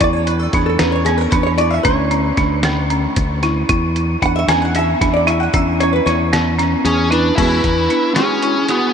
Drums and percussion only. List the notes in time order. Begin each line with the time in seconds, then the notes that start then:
0.01 kick, closed hi-hat
0.27 closed hi-hat
0.53 kick, snare, closed hi-hat
0.79 snare, closed hi-hat
1.06 snare, closed hi-hat
1.32 kick, closed hi-hat
1.58 closed hi-hat
1.85 kick, closed hi-hat
2.11 closed hi-hat
2.37 kick, snare, closed hi-hat
2.63 snare, closed hi-hat
2.90 closed hi-hat
3.16 kick, closed hi-hat
3.43 snare, closed hi-hat
3.69 kick, closed hi-hat
3.96 closed hi-hat
4.22 kick, closed hi-hat
4.48 snare, closed hi-hat
4.75 closed hi-hat
5.01 kick, snare, closed hi-hat
5.28 closed hi-hat
5.54 kick, closed hi-hat
5.81 closed hi-hat
6.07 snare, closed hi-hat
6.33 snare, closed hi-hat
6.59 snare, closed hi-hat
6.85 snare, closed hi-hat
7.12 snare, closed hi-hat
7.38 kick, closed hi-hat, crash
7.64 kick, closed hi-hat
7.90 closed hi-hat
8.16 snare, closed hi-hat
8.42 closed hi-hat
8.69 snare, closed hi-hat